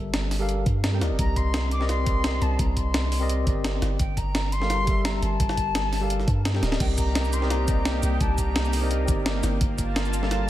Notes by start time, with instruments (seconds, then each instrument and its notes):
Already playing: 808-style bass G1, tine electric piano G3 G4 A4 A#4 E5
0.14 snare, closed hi-hat
0.31 snare, open hi-hat
0.39 tine electric piano G3 G4 A4 A#4 F5
0.49 closed hi-hat
0.66 808-style bass G2, kick, closed hi-hat
0.84 snare, closed hi-hat
0.92 tine electric piano G3 G4 A4 A#4 G5
0.98 808-style bass D2, tine electric piano C4 G4 A#4, snare, closed hi-hat
1.03 tine electric piano D5 D#5
1.11 808-style bass F1
1.19 808-style bass C2, flute A#5, kick, closed hi-hat
1.36 flute C6, kick, closed hi-hat
1.54 snare, closed hi-hat
1.71 flute D6, closed hi-hat
1.79 tine electric piano C4 G4 A#4 D5 D#5, snare
1.89 flute C6, snare, closed hi-hat
2.04 tine electric piano C4 G4 A#4, kick, closed hi-hat
2.08 tine electric piano D5 D#5
2.24 snare, closed hi-hat
2.42 808-style bass C2, flute A5, closed hi-hat
2.59 808-style bass C2, flute A#5, kick, closed hi-hat
2.77 flute C6, kick, closed hi-hat
2.94 snare, closed hi-hat
3.12 open hi-hat
3.20 tine electric piano C4 G4 A#4 D5 D#5
3.29 closed hi-hat
3.44 808-style bass G1, tine electric piano C4 G4 A#4, kick, closed hi-hat
3.48 tine electric piano D5 D#5
3.64 snare, closed hi-hat
3.82 808-style bass G1, snare, closed hi-hat
3.99 808-style bass G1, flute G5, kick, closed hi-hat
4.17 flute A#5, kick, closed hi-hat
4.35 snare, closed hi-hat
4.52 flute C6, closed hi-hat
4.60 tine electric piano G3 G4 A4 A#4 F5, snare
4.70 snare, closed hi-hat
4.84 tine electric piano G3 G4 A4, kick, closed hi-hat
4.89 tine electric piano A#4 E5
5.05 flute A#5, snare, closed hi-hat
5.22 808-style bass G1, flute A5, closed hi-hat
5.40 808-style bass G1, kick, closed hi-hat
5.49 snare
5.57 kick, closed hi-hat
5.75 snare, closed hi-hat
5.93 snare, open hi-hat
6.00 tine electric piano G3 G4 A4 A#4 F5
6.10 closed hi-hat
6.20 snare
6.28 808-style bass G2, kick, closed hi-hat
6.45 snare, closed hi-hat
6.53 tine electric piano G3 G4 A4 A#4 G5, snare
6.60 808-style bass D1, tine electric piano C4 G4 A#4, snare, closed hi-hat
6.64 tine electric piano D5 D#5
6.72 snare
6.80 808-style bass C2, analog synth pad A#3 D#4 G4, flute G5, kick, closed hi-hat, crash
6.98 flute A#5, kick, closed hi-hat, cabasa
7.15 snare, closed hi-hat
7.25 cabasa
7.33 flute C6, closed hi-hat, cabasa
7.41 tine electric piano C4 G4 A#4 D5 D#5, snare
7.50 flute A#5, snare, closed hi-hat
7.65 tine electric piano C4 G4 A#4, kick, closed hi-hat, cabasa
7.69 tine electric piano D5 D#5
7.85 snare, closed hi-hat
8.03 808-style bass C2, flute G5, closed hi-hat, cabasa
8.21 808-style bass C2, flute A5, kick, closed hi-hat
8.38 flute A#5, kick, closed hi-hat, cabasa
8.56 snare, closed hi-hat
8.65 cabasa
8.73 open hi-hat, cabasa
8.81 tine electric piano C4 G4 A#4 D5 D#5
8.91 closed hi-hat
9.05 808-style bass G1, tine electric piano C4 G4 A#4, kick, closed hi-hat, cabasa
9.10 tine electric piano D5 D#5
9.26 snare, closed hi-hat
9.43 808-style bass G1, snare, closed hi-hat, cabasa
9.61 808-style bass G1, analog synth pad F4 A5, kick, closed hi-hat
9.78 kick, closed hi-hat, cabasa
9.96 snare, closed hi-hat
10.05 cabasa
10.14 closed hi-hat, cabasa
10.21 tine electric piano G3 G4 A4 A#4 F5, snare
10.31 snare, closed hi-hat
10.46 tine electric piano G3